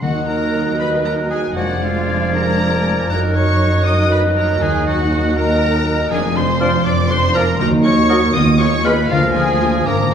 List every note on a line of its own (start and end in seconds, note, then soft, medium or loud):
0.02 1.52 D#2 soft
0.02 1.53 D#2 soft
0.02 0.75 D#3 medium
0.02 1.52 D#3 soft
0.02 1.58 D#3 soft
0.02 1.52 F#3 soft
0.02 1.52 D#4 soft
0.02 0.14 F#4 soft
0.02 0.27 F#4 soft
0.02 1.53 D#5 soft
0.02 0.26 F#5 medium
0.02 1.52 F#6 soft
0.27 1.58 D#4 soft
0.27 0.79 A#4 soft
0.27 0.79 A#4 medium
0.27 0.78 A#5 soft
0.54 1.58 F#4 soft
0.79 1.05 B4 soft
0.79 0.91 B4 soft
0.79 1.29 D#5 soft
0.79 0.87 B5 medium
1.05 1.13 A#4 soft
1.05 1.30 A#4 soft
1.05 4.95 A#5 soft
1.05 1.13 A#5 medium
1.30 1.42 G#4 soft
1.30 1.39 G#4 soft
1.30 1.58 D#5 soft
1.30 1.55 G#5 medium
1.56 3.08 F1 soft
1.56 3.12 F2 soft
1.56 3.07 F2 soft
1.56 3.07 F3 soft
1.56 2.33 G#3 soft
1.56 3.06 G#3 soft
1.56 2.33 D4 soft
1.56 3.06 D4 soft
1.56 1.81 F#4 soft
1.56 1.68 F#4 soft
1.56 3.13 D5 medium
1.56 1.81 F#5 medium
1.56 3.12 G#6 soft
1.81 3.12 G#3 soft
1.81 2.33 F4 soft
1.81 2.34 F4 medium
1.81 2.35 F5 soft
2.08 3.59 A#4 soft
2.34 3.08 G#3 soft
2.34 3.08 D4 soft
2.34 2.84 G#4 soft
2.34 3.09 A#4 medium
2.34 3.09 A#5 medium
2.60 3.12 D5 soft
2.85 3.12 G#4 soft
3.10 4.58 F#1 soft
3.10 4.63 F#2 soft
3.10 4.58 F#2 medium
3.10 6.08 D#3 soft
3.10 3.84 F#3 soft
3.10 6.07 F#3 medium
3.10 6.07 D#4 medium
3.10 3.85 D#4 soft
3.10 3.35 A#4 medium
3.10 6.12 D#5 medium
3.10 3.19 A#5 medium
3.10 6.11 F#6 medium
3.35 6.13 F#3 soft
3.35 3.86 C#5 medium
3.35 3.88 C#5 medium
3.35 3.85 C#6 medium
3.60 6.13 A#4 soft
3.86 4.60 F#3 medium
3.86 4.60 D#4 medium
3.86 4.35 F#4 soft
3.86 4.11 D#5 medium
3.86 4.11 D#6 medium
4.11 4.20 B4 medium
4.11 4.23 B4 medium
4.11 5.36 D#5 soft
4.11 4.19 B5 medium
4.36 5.10 F#4 soft
4.36 4.61 A#4 medium
4.36 4.64 A#4 medium
4.36 4.61 A#5 medium
4.61 6.11 D#2 medium
4.61 6.13 D#3 medium
4.61 5.35 F#3 medium
4.61 5.35 D#4 medium
4.61 4.86 G#4 medium
4.61 4.87 G#5 medium
4.86 6.13 D#4 soft
4.86 5.35 F#4 medium
4.86 5.36 F#4 medium
4.86 5.36 F#5 medium
5.12 6.13 F#4 soft
5.36 6.10 F#3 medium
5.36 6.10 D#4 medium
5.36 6.13 A#4 medium
5.36 6.10 A#4 medium
5.36 5.85 D#5 soft
5.36 6.10 A#5 medium
5.86 6.13 D#5 soft
6.11 6.76 F1 medium
6.11 6.76 F2 medium
6.11 6.19 F3 medium
6.11 7.61 F3 medium
6.11 7.56 F3 medium
6.11 6.19 D4 medium
6.11 7.56 D4 medium
6.11 6.19 G#4 medium
6.11 6.38 G#4 medium
6.11 6.36 G#5 medium
6.35 6.44 F3 medium
6.35 6.43 D4 soft
6.35 7.61 D4 medium
6.35 6.84 C5 medium
6.35 6.87 C5 medium
6.35 6.85 C6 medium
6.60 6.68 F3 soft
6.60 6.69 F3 medium
6.60 6.68 D4 soft
6.60 7.62 G#4 soft
6.60 6.70 D5 medium
6.60 6.72 F6 medium
6.85 7.51 F1 medium
6.85 7.51 F2 medium
6.85 6.93 F3 medium
6.85 6.93 D4 medium
6.85 7.10 D5 medium
6.85 7.33 D5 soft
6.85 7.13 D5 medium
6.85 7.10 D6 medium
7.09 7.18 F3 medium
7.09 7.18 D4 medium
7.09 7.34 C5 medium
7.09 7.38 C5 medium
7.09 7.35 C6 medium
7.09 7.62 D6 soft
7.34 7.43 F3 medium
7.34 7.44 F3 medium
7.34 7.42 D4 soft
7.34 7.58 A#4 medium
7.34 7.60 A#4 medium
7.34 7.61 D5 medium
7.34 7.44 D5 medium
7.34 7.59 A#5 medium
7.34 7.46 F6 medium
7.59 8.26 D#2 medium
7.59 8.30 D#3 medium
7.59 8.34 D#3 medium
7.59 7.68 F#3 medium
7.59 8.35 F#3 medium
7.59 7.67 D#4 medium
7.59 8.34 D#4 medium
7.59 7.67 A#4 medium
7.59 7.72 A#4 medium
7.59 7.68 A#5 medium
7.83 7.92 F#3 medium
7.83 7.92 D#4 medium
7.83 8.09 D#4 medium
7.83 8.33 C#5 medium
7.83 8.37 C#5 medium
7.83 8.33 C#6 medium
8.09 8.17 F#3 medium
8.09 8.18 F#3 medium
8.09 8.17 D#4 medium
8.09 9.12 D#4 soft
8.09 8.18 A#4 medium
8.09 8.37 A#4 soft
8.09 8.21 D#6 medium
8.33 9.01 D#2 medium
8.33 9.12 D#3 medium
8.33 8.41 B3 medium
8.33 8.93 B3 medium
8.33 8.42 F4 soft
8.33 9.87 F4 medium
8.33 8.42 D#5 medium
8.33 8.60 D#5 medium
8.33 8.59 D#6 medium
8.58 9.12 G#3 soft
8.58 8.67 B3 medium
8.58 8.66 F4 soft
8.58 8.84 C#5 medium
8.58 8.87 C#5 medium
8.58 8.84 C#6 medium
8.84 8.94 G#3 medium
8.84 8.92 B3 soft
8.84 8.92 F4 soft
8.84 9.60 F4 soft
8.84 8.93 B4 medium
8.84 8.94 B4 medium
8.84 9.10 B4 medium
8.84 9.10 B5 medium
8.84 8.96 F6 medium
9.09 9.77 D2 medium
9.09 9.89 D3 medium
9.09 9.83 F3 medium
9.09 9.17 A#3 medium
9.09 10.14 A#3 medium
9.09 9.17 F4 medium
9.09 9.18 F4 medium
9.09 9.22 F4 medium
9.09 9.83 A#4 medium
9.09 9.35 F5 medium
9.09 9.45 F6 medium
9.34 10.14 F3 soft
9.34 9.42 A#3 medium
9.34 9.43 F4 soft
9.34 9.85 G#4 medium
9.34 9.86 G#4 medium
9.34 9.85 G#5 medium
9.48 9.87 D#6 medium
9.60 9.68 A#3 soft
9.60 9.68 F4 medium
9.60 10.14 F4 soft
9.60 10.14 A#4 soft
9.85 10.14 G#1 medium
9.85 10.14 G#2 medium
9.85 10.14 F3 medium
9.85 9.93 A#3 soft
9.85 9.93 D4 soft
9.85 10.14 D4 medium
9.85 10.14 A#4 medium
9.85 10.12 A#4 medium
9.85 9.99 A#4 medium
9.85 10.12 A#5 medium
9.85 10.14 D6 medium